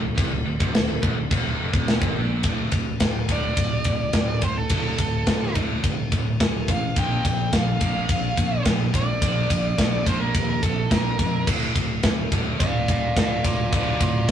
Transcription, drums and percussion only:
0.18 kick, crash
0.60 kick
0.75 snare, crash
1.03 kick
1.31 kick, crash
1.74 kick
1.88 snare, crash
2.02 kick
2.43 kick, ride
2.72 kick, ride
3.00 kick, snare, ride
3.29 kick, ride
3.57 kick, ride
3.84 kick, ride
4.13 kick, snare, ride
4.42 kick, ride
4.69 kick, ride
4.98 kick, ride
5.27 kick, snare, ride
5.55 kick, ride
5.84 kick, ride
6.12 kick, ride
6.40 kick, snare, ride
6.68 kick, ride
6.96 kick, ride
7.25 kick, ride
7.53 kick, snare, ride
7.81 kick, ride
8.09 kick, ride
8.37 kick, ride
8.65 kick, snare, ride
8.94 kick, ride
9.22 kick, ride
9.50 kick, ride
9.78 kick, snare, ride
10.06 kick, ride
10.35 kick, ride
10.63 kick, ride
10.91 kick, snare, ride
11.19 kick, ride
11.47 kick, crash
11.76 kick, ride
12.03 kick, snare, ride
12.32 kick, ride
12.60 kick, ride
12.88 kick, ride
13.17 kick, snare, ride
13.45 kick, ride
13.73 kick, ride
14.01 kick, ride

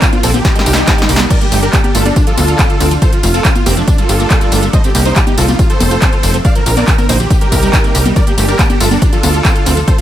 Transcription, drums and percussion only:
0.02 kick, clap, closed hi-hat, tambourine
0.13 closed hi-hat, tambourine, high conga
0.23 open hi-hat, ride, tambourine
0.34 closed hi-hat, tambourine, high conga
0.45 kick, snare, closed hi-hat, tambourine
0.56 snare, closed hi-hat, tambourine
0.66 open hi-hat, ride, tambourine
0.73 snare, closed hi-hat, tambourine
0.88 kick, snare, clap, closed hi-hat, tambourine
0.98 snare, closed hi-hat, tambourine
1.09 open hi-hat, ride, tambourine
1.16 snare, closed hi-hat, tambourine, high conga
1.30 kick, closed hi-hat, crash, tambourine
1.41 closed hi-hat, tambourine
1.52 open hi-hat, ride, tambourine
1.63 closed hi-hat, tambourine
1.73 kick, clap, closed hi-hat, tambourine
1.84 closed hi-hat, tambourine, high conga
1.95 open hi-hat, ride, tambourine
2.05 closed hi-hat, tambourine, high conga
2.16 kick, closed hi-hat, tambourine
2.27 closed hi-hat, tambourine
2.38 open hi-hat, ride, tambourine, high conga
2.48 closed hi-hat, tambourine
2.59 kick, clap, closed hi-hat, tambourine
2.70 closed hi-hat, tambourine
2.80 open hi-hat, ride, tambourine
2.91 closed hi-hat, tambourine
3.02 kick, closed hi-hat, tambourine
3.13 closed hi-hat, tambourine
3.23 open hi-hat, ride, tambourine
3.34 closed hi-hat, tambourine
3.45 kick, clap, closed hi-hat, tambourine
3.55 closed hi-hat, tambourine, high conga
3.66 open hi-hat, ride, tambourine
3.77 closed hi-hat, tambourine
3.88 kick, closed hi-hat, tambourine
3.98 closed hi-hat, tambourine
4.09 open hi-hat, ride, tambourine
4.20 closed hi-hat, tambourine
4.30 kick, clap, closed hi-hat, tambourine
4.41 closed hi-hat, tambourine
4.52 open hi-hat, ride, tambourine
4.63 closed hi-hat, tambourine
4.73 kick, closed hi-hat, tambourine
4.84 closed hi-hat, tambourine
4.95 open hi-hat, ride, tambourine
5.05 closed hi-hat, tambourine
5.16 kick, clap, closed hi-hat, tambourine
5.27 closed hi-hat, tambourine, high conga
5.38 open hi-hat, ride, tambourine
5.48 closed hi-hat, tambourine, high conga
5.59 kick, closed hi-hat, tambourine
5.70 closed hi-hat, tambourine
5.80 open hi-hat, ride, tambourine, high conga
5.91 closed hi-hat, tambourine
6.02 kick, clap, closed hi-hat, tambourine
6.13 closed hi-hat, tambourine
6.23 open hi-hat, ride, tambourine
6.34 closed hi-hat
6.45 kick, closed hi-hat, tambourine
6.55 closed hi-hat, tambourine
6.66 open hi-hat, ride, tambourine
6.77 clap, closed hi-hat, tambourine, high conga
6.88 kick, clap, closed hi-hat, tambourine
6.98 closed hi-hat, tambourine, high conga
7.09 open hi-hat, ride, tambourine
7.20 closed hi-hat, tambourine
7.30 kick, closed hi-hat, tambourine
7.41 closed hi-hat, tambourine
7.52 kick, open hi-hat, ride, tambourine
7.63 closed hi-hat, tambourine
7.73 kick, clap, closed hi-hat, tambourine
7.84 closed hi-hat, tambourine
7.95 open hi-hat, ride, tambourine
8.06 closed hi-hat, tambourine, high conga
8.16 kick, closed hi-hat, tambourine
8.27 closed hi-hat, tambourine
8.38 open hi-hat, ride, tambourine
8.48 closed hi-hat, tambourine
8.59 kick, clap, closed hi-hat, tambourine
8.70 closed hi-hat, tambourine, high conga
8.80 open hi-hat, ride, tambourine
8.91 closed hi-hat, tambourine, high conga
9.02 kick, closed hi-hat, tambourine
9.13 closed hi-hat, tambourine
9.23 open hi-hat, ride, tambourine, high conga
9.34 closed hi-hat, tambourine
9.45 kick, clap, closed hi-hat, tambourine
9.56 closed hi-hat, tambourine
9.66 open hi-hat, ride, tambourine
9.77 closed hi-hat, tambourine
9.88 kick, closed hi-hat, tambourine

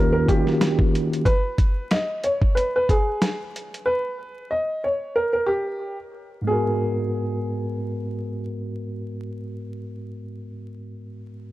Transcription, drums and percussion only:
0.28 kick, closed hi-hat
0.47 snare
0.61 snare, closed hi-hat
0.79 kick
0.95 closed hi-hat
1.13 closed hi-hat
1.26 kick, closed hi-hat
1.58 kick, closed hi-hat
1.91 snare, closed hi-hat
2.24 closed hi-hat
2.42 kick
2.57 closed hi-hat
2.89 kick, closed hi-hat
3.22 snare, closed hi-hat
3.56 closed hi-hat
3.74 closed hi-hat

